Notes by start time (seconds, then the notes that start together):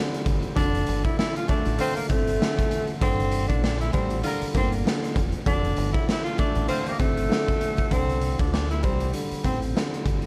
Already playing: D3 G3 C4
0.14 closed hi-hat
0.26 G1, kick, closed hi-hat
0.42 closed hi-hat
0.56 F1 D3 D4, kick, closed hi-hat
0.75 closed hi-hat
0.87 G1, closed hi-hat
1.04 E4, kick, closed hi-hat
1.18 E4, snare
1.36 F4, closed hi-hat
1.48 A3 D4, kick, closed hi-hat
1.65 A1, closed hi-hat
1.78 D3 A3 C4 F4 C5, closed hi-hat
1.96 A#3, closed hi-hat
2.08 G1 A3 C4, kick, closed hi-hat
2.27 closed hi-hat
2.41 D3, snare
2.59 kick, closed hi-hat
2.71 closed hi-hat
2.87 closed hi-hat
3.01 G1 D3 C4, kick, closed hi-hat
3.20 closed hi-hat
3.32 closed hi-hat
3.48 A#1 D4, kick, closed hi-hat
3.63 D4, snare
3.80 E4, closed hi-hat
3.93 A1 G3 C4, kick, closed hi-hat
4.10 closed hi-hat
4.23 D3 G3 F4 A#4, closed hi-hat
4.41 muted fingered electric bass stroke, closed hi-hat
4.54 G1 A#3 C4, kick, closed hi-hat
4.72 closed hi-hat
4.85 D3, snare
5.04 closed hi-hat
5.16 F1, kick, closed hi-hat
5.32 closed hi-hat
5.46 F1 D3 D4, kick, closed hi-hat
5.64 closed hi-hat
5.76 G1, closed hi-hat
5.93 E4, kick, closed hi-hat
6.09 E4, snare
6.24 F4, closed hi-hat
6.38 A3 D4, kick, closed hi-hat
6.55 A1, closed hi-hat
6.67 D3 A3 C4 F4 C5, closed hi-hat
6.86 A#3, closed hi-hat
6.99 G1 A3 C4, kick, closed hi-hat
7.17 closed hi-hat
7.29 D3, snare
7.48 kick, closed hi-hat
7.61 closed hi-hat
7.77 kick, closed hi-hat
7.91 C2 D3 C4, kick, closed hi-hat
8.09 closed hi-hat
8.21 closed hi-hat
8.39 D2 D4, kick, closed hi-hat
8.53 D4, snare
8.70 E4, closed hi-hat
8.83 C2 G3 C4, kick, closed hi-hat
9.00 closed hi-hat
9.13 D3, closed hi-hat
9.31 muted fingered electric bass stroke, closed hi-hat
9.43 A1 C4, kick, closed hi-hat
9.62 closed hi-hat
9.75 D3, snare
9.94 closed hi-hat
10.06 G1, kick, closed hi-hat
10.22 closed hi-hat